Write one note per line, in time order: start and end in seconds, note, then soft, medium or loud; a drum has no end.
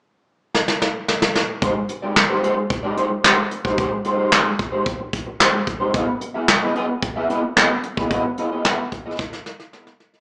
0.54 snare medium
0.68 snare medium
0.82 snare medium
1.08 snare medium
1.22 snare loud
1.35 snare medium
1.62 1.80 G#3 medium
1.62 1.76 D#4 medium
1.62 1.75 G4 medium
1.62 1.75 C5 medium
1.62 kick loud
1.62 closed hi-hat medium
1.76 muted clean electric guitar stroke soft
1.89 muted clean electric guitar stroke soft
1.89 closed hi-hat medium
2.02 2.14 G#3 soft
2.02 2.15 D#4 medium
2.02 2.15 G4 medium
2.02 2.16 D5 medium
2.16 muted clean electric guitar stroke soft
2.16 snare loud
2.16 clap medium
2.16 closed hi-hat medium
2.29 2.41 G#3 medium
2.29 2.42 D#4 medium
2.29 2.42 G4 medium
2.29 2.43 C5 medium
2.43 2.61 G#3 medium
2.43 2.56 D#4 medium
2.43 2.56 G4 medium
2.43 2.55 C5 medium
2.43 closed hi-hat medium
2.56 muted clean electric guitar stroke soft
2.70 muted clean electric guitar stroke soft
2.70 kick loud
2.70 closed hi-hat medium
2.83 2.95 G#3 medium
2.83 2.96 D#4 medium
2.83 2.96 G4 medium
2.83 2.97 D5 medium
2.96 3.11 G#3 medium
2.96 3.10 D#4 medium
2.96 3.09 G4 medium
2.96 3.09 C5 medium
2.96 closed hi-hat medium
3.10 muted clean electric guitar stroke soft
3.24 3.42 G#3 medium
3.24 3.37 D#4 medium
3.24 3.37 G4 medium
3.24 3.36 C5 loud
3.24 snare loud
3.24 clap medium
3.24 closed hi-hat medium
3.37 muted clean electric guitar stroke soft
3.51 muted clean electric guitar stroke soft
3.51 closed hi-hat medium
3.64 3.77 G#3 soft
3.64 3.77 D#4 medium
3.64 3.78 G4 medium
3.64 3.78 C5 medium
3.64 kick medium
3.78 3.96 G#3 medium
3.78 3.91 D#4 medium
3.78 3.91 G4 medium
3.78 3.90 C5 medium
3.78 kick loud
3.78 closed hi-hat medium
3.91 muted clean electric guitar stroke soft
4.04 4.18 G#3 medium
4.04 4.18 D#4 medium
4.04 4.18 G4 medium
4.04 4.17 C5 medium
4.04 closed hi-hat medium
4.18 4.30 G#3 soft
4.18 4.31 D#4 medium
4.18 4.31 G4 medium
4.18 4.32 C5 medium
4.32 4.50 G#3 medium
4.32 4.45 D#4 medium
4.32 4.45 G4 medium
4.32 4.45 D5 medium
4.32 snare loud
4.32 clap medium
4.32 closed hi-hat medium
4.45 muted clean electric guitar stroke soft
4.59 muted clean electric guitar stroke soft
4.59 kick medium
4.59 closed hi-hat medium
4.72 4.85 G#3 soft
4.72 4.85 D#4 medium
4.72 4.85 G4 medium
4.72 4.86 C5 medium
4.86 muted clean electric guitar stroke soft
4.86 kick loud
4.86 closed hi-hat medium
4.99 muted clean electric guitar stroke soft
5.13 kick medium
5.13 closed hi-hat medium
5.26 muted clean electric guitar stroke soft
5.40 5.58 G#3 medium
5.40 5.53 D#4 medium
5.40 5.53 G4 medium
5.40 5.52 C5 medium
5.40 snare loud
5.40 clap medium
5.40 closed hi-hat medium
5.53 muted clean electric guitar stroke soft
5.67 muted clean electric guitar stroke soft
5.67 kick medium
5.67 closed hi-hat medium
5.80 5.93 G#3 soft
5.80 5.94 D#4 medium
5.80 5.94 G4 medium
5.80 5.94 C5 medium
5.93 6.12 B3 medium
5.93 6.07 E4 medium
5.93 6.07 G#4 medium
5.93 6.06 D#5 medium
5.93 kick loud
5.93 closed hi-hat medium
6.07 muted clean electric guitar stroke soft
6.21 muted clean electric guitar stroke soft
6.21 closed hi-hat medium
6.34 6.47 B3 soft
6.34 6.47 E4 soft
6.34 6.48 G#4 medium
6.34 6.49 E5 medium
6.48 muted clean electric guitar stroke soft
6.48 snare loud
6.48 clap medium
6.48 closed hi-hat medium
6.61 6.74 B3 medium
6.61 6.74 E4 medium
6.61 6.75 G#4 medium
6.61 6.75 D#5 medium
6.75 6.93 B3 medium
6.75 6.88 E4 medium
6.75 6.88 G#4 medium
6.75 6.87 D#5 medium
6.75 closed hi-hat medium
6.89 muted clean electric guitar stroke soft
7.02 muted clean electric guitar stroke soft
7.02 kick loud
7.02 closed hi-hat medium
7.16 7.28 B3 medium
7.16 7.29 E4 medium
7.16 7.29 G#4 medium
7.16 7.31 E5 medium
7.29 7.43 B3 medium
7.29 7.43 E4 medium
7.29 7.43 G#4 medium
7.29 7.42 D#5 medium
7.29 closed hi-hat medium
7.43 muted clean electric guitar stroke soft
7.56 7.74 B3 medium
7.56 7.70 E4 medium
7.56 7.70 G#4 medium
7.56 7.69 D#5 medium
7.56 snare loud
7.56 clap medium
7.56 closed hi-hat medium
7.70 muted clean electric guitar stroke soft
7.83 muted clean electric guitar stroke soft
7.83 closed hi-hat medium
7.97 8.09 B3 soft
7.97 8.10 E4 soft
7.97 8.11 G#4 soft
7.97 8.11 D#5 medium
7.97 kick medium
8.11 8.28 B3 medium
8.11 8.24 E4 medium
8.11 8.24 G#4 medium
8.11 8.23 D#5 medium
8.11 kick loud
8.11 closed hi-hat medium
8.25 muted clean electric guitar stroke soft
8.38 8.52 B3 medium
8.38 8.51 E4 medium
8.38 8.51 G#4 medium
8.38 8.50 D#5 medium
8.38 closed hi-hat medium
8.52 8.64 B3 medium
8.52 8.64 E4 soft
8.52 8.65 G#4 medium
8.52 8.65 D#5 medium
8.65 8.83 B3 medium
8.65 8.78 E4 medium
8.65 8.78 G#4 medium
8.65 8.78 E5 medium
8.65 snare loud
8.65 clap medium
8.65 closed hi-hat medium
8.79 muted clean electric guitar stroke medium
8.92 muted clean electric guitar stroke soft
8.92 kick medium
8.92 closed hi-hat medium
9.06 9.18 B3 soft
9.06 9.18 E4 medium
9.06 9.19 G#4 medium
9.06 9.19 D#5 medium
9.19 muted clean electric guitar stroke soft
9.19 kick loud
9.19 snare medium
9.33 muted clean electric guitar stroke soft
9.33 snare soft
9.46 snare medium
9.59 muted clean electric guitar stroke soft
9.59 snare medium
9.73 9.91 B3 medium
9.73 9.86 E4 medium
9.73 9.86 G#4 medium
9.73 9.85 D#5 medium
9.73 snare medium
9.86 muted clean electric guitar stroke soft
9.86 snare medium
10.00 muted clean electric guitar stroke soft
10.00 snare medium
10.13 10.20 B3 soft
10.13 10.20 E4 medium
10.13 10.20 G#4 medium
10.13 10.20 D#5 medium
10.13 snare medium